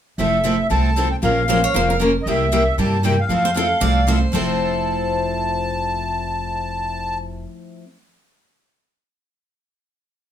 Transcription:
0.18 upright bass F1, steel-string acoustic guitar F3 A3 C4 E4 A4, accordion E5
0.45 steel-string acoustic guitar F3 A3 C4 E4 A4
0.70 upright bass C2, steel-string acoustic guitar F3 A3 C4 E4 A4, accordion A5
0.97 steel-string acoustic guitar F3 A3 C4 E4 A4
1.11 accordion G5
1.23 upright bass A#1, steel-string acoustic guitar F3 A#3 C#4 F4 A#4, accordion F5
1.49 steel-string acoustic guitar F3 A#3 C#4 F4 A#4 C5
1.64 steel-string acoustic guitar C#5
1.74 upright bass F1, steel-string acoustic guitar F3 A#3 C#4 F4 A#4 C5
1.90 steel-string acoustic guitar A#4
1.99 steel-string acoustic guitar F3 A#3 C#4 F4 A#4
2.22 upright bass C2, accordion D#5
2.27 steel-string acoustic guitar C3 G3 A#3 E4 G4, accordion E5
2.52 steel-string acoustic guitar C3 G3 A#3 E4 G4
2.78 upright bass G2, steel-string acoustic guitar C3 G3 A#3 E4 G4, accordion A5
3.03 steel-string acoustic guitar C3 G3 A#3 E4 G4, accordion G5
3.20 accordion F5
3.29 upright bass F2, steel-string acoustic guitar F3 A3 C4 E4 A4
3.45 steel-string acoustic guitar C5
3.54 steel-string acoustic guitar F3 A3 C4 E4 A4
3.80 upright bass C2, steel-string acoustic guitar F3 A3 C4 E4 A4 D5
4.07 steel-string acoustic guitar F3 A3 C4 E4 A4 C5
4.32 upright bass F1, steel-string acoustic guitar F3 A3 C4 E4 A4 C5, accordion A5

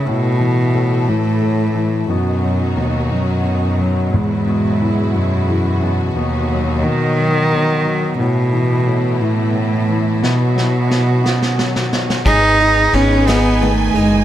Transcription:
Already playing: string section E3 E4
0.06 grand piano A2, cello B2, string section A3 A4
0.40 grand piano E3
0.73 grand piano A2
1.08 cello A2, grand piano E3
1.41 grand piano A2
1.75 grand piano E3
2.08 cello F#2, string section B2 D#3 F#3 D#4 F#4, grand piano B2
2.43 grand piano F#3
2.77 cello D#2, grand piano B2
3.10 cello F#2, grand piano F#3
3.45 grand piano B2
3.79 grand piano F#3
4.12 grand piano E2, cello G#2, string section G#3 E4 F#4
4.47 grand piano B2
4.82 grand piano E3
5.13 cello F#2, grand piano B2
5.48 grand piano E3
5.83 grand piano B2
6.14 cello D#2, grand piano B2, string section D#3 F#3 D#4
6.50 grand piano F#3
6.83 grand piano B2, cello D#3
7.19 grand piano F#3
7.52 grand piano B2
7.85 grand piano F#3
8.18 grand piano A2, string section B2 E3 A3 B3 E4, cello B2
8.53 grand piano E3
8.87 grand piano A2
9.20 cello A2, grand piano E3
9.54 grand piano A2
9.89 grand piano E3
10.22 string section B2 E3 F#3 F#4, grand piano B2, cello B2, snare
10.55 grand piano F#3, snare
10.90 grand piano B2, snare
11.23 grand piano B2, string section D#3 F#3 C#4, snare
11.42 snare
11.58 grand piano F#3, snare
11.76 snare
11.92 grand piano B2, snare
12.10 snare
12.26 upright bass G#1, string section D#4 G#4 B4 G#5, cello D#4, grand piano G#4, kick, crash
12.60 grand piano D#4, ride
12.93 upright bass G#1, grand piano B3, cello C#4, ride
13.27 cello B3, grand piano D#4, snare, ride
13.61 grand piano D#3, cello A3, ride
13.95 upright bass F#1, cello G#3, grand piano D#4, ride

